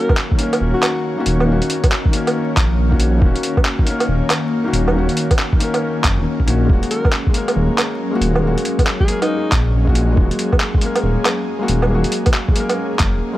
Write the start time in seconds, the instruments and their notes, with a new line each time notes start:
Already playing: felt piano D#3 A#3 C#4 F#4, ambient pad D#3 A#3 C#4 F#4 C#5, alto saxophone A#4
0.09 kick, low woodblock
0.17 clap
0.32 felt piano D#3, kick
0.38 felt piano A#3 C#4, closed hi-hat
0.43 felt piano A#4
0.53 closed hi-hat, low woodblock
0.61 detuned saw bass D#1
0.74 alto saxophone F#4
0.83 clap, closed hi-hat, low woodblock
1.16 felt piano D#3 A#3 C#4 F#4
1.26 detuned saw bass D#1, closed hi-hat
1.40 felt piano D#3, low woodblock
1.46 detuned saw bass D#1, felt piano A#3 C#4
1.52 felt piano F#4
1.62 closed hi-hat
1.70 closed hi-hat
1.84 kick, closed hi-hat, low woodblock
1.92 clap
2.06 felt piano D#3, kick
2.11 felt piano A#3 C#4, closed hi-hat
2.17 felt piano A#4
2.27 closed hi-hat, low woodblock
2.57 detuned saw bass A#1, kick, clap, closed hi-hat
2.79 detuned saw bass A#1
2.89 felt piano D#3 A#3 C#4, kick
2.93 felt piano F#4
3.00 closed hi-hat
3.17 felt piano D#3 A#3
3.22 detuned saw bass D#1, felt piano C#4 F#4, kick
3.36 closed hi-hat
3.43 closed hi-hat
3.57 kick, low woodblock
3.65 clap
3.79 felt piano D#3, kick
3.85 felt piano A#3 C#4, closed hi-hat
3.91 felt piano A#4
4.00 closed hi-hat, low woodblock
4.08 detuned saw bass D#1
4.30 clap, closed hi-hat, low woodblock
4.64 felt piano D#3 A#3 C#4 F#4
4.73 detuned saw bass D#1, closed hi-hat
4.88 felt piano D#3, low woodblock
4.93 detuned saw bass D#1, felt piano A#3 C#4
4.98 felt piano F#4
5.09 closed hi-hat
5.17 closed hi-hat
5.31 kick, closed hi-hat, low woodblock
5.39 clap
5.53 felt piano D#3, kick
5.59 felt piano A#3 C#4, closed hi-hat
5.64 felt piano A#4
5.74 closed hi-hat, low woodblock
6.04 detuned saw bass F#1, kick, clap, closed hi-hat
6.18 detuned saw bass D#1
6.40 kick
6.45 detuned saw bass A#1, felt piano D#3 A#3 C#4 F#4, closed hi-hat
6.65 felt piano G#3
6.69 detuned saw bass D#1, ambient pad F#3, felt piano A#3 F#4, kick
6.83 closed hi-hat
6.91 alto saxophone A#4, closed hi-hat
7.05 kick, low woodblock
7.12 clap
7.27 felt piano G#3, kick
7.33 felt piano A#3, closed hi-hat
7.37 felt piano A#4
7.48 closed hi-hat, low woodblock
7.56 detuned saw bass D#1
7.78 clap, closed hi-hat, low woodblock
8.02 ambient pad G#4
8.11 felt piano G#3 A#3
8.15 felt piano F#4
8.21 detuned saw bass D#1, closed hi-hat
8.35 felt piano G#3, low woodblock
8.43 detuned saw bass D#1, felt piano A#3
8.47 felt piano F#4
8.58 closed hi-hat
8.65 closed hi-hat
8.79 kick, closed hi-hat, low woodblock
8.87 clap
9.00 felt piano G#3, alto saxophone G#4, kick
9.08 felt piano A#3, closed hi-hat
9.12 felt piano A#4
9.22 alto saxophone D#4, closed hi-hat, low woodblock
9.52 detuned saw bass A#1, kick, clap, closed hi-hat
9.74 detuned saw bass A#1
9.85 felt piano G#3 A#3, kick
9.89 felt piano F#4
9.95 closed hi-hat
10.12 felt piano G#3 A#3
10.17 detuned saw bass D#1, felt piano F#4, kick
10.31 closed hi-hat
10.39 closed hi-hat
10.52 kick, low woodblock
10.60 clap
10.74 felt piano G#3, kick
10.81 felt piano A#3, closed hi-hat
10.86 felt piano A#4
10.96 closed hi-hat, low woodblock
11.03 detuned saw bass D#1
11.25 clap, closed hi-hat, low woodblock
11.59 felt piano G#3 A#3 F#4
11.68 detuned saw bass D#1, closed hi-hat
11.82 felt piano G#3, low woodblock
11.90 detuned saw bass D#1, felt piano A#3
11.94 felt piano F#4
12.04 closed hi-hat
12.12 closed hi-hat
12.26 kick, closed hi-hat, low woodblock
12.34 clap
12.48 felt piano G#3, kick
12.56 felt piano A#3, closed hi-hat
12.60 felt piano A#4
12.70 closed hi-hat, low woodblock
12.99 detuned saw bass F#1, kick, clap, closed hi-hat
13.14 detuned saw bass D#1
13.33 felt piano G#3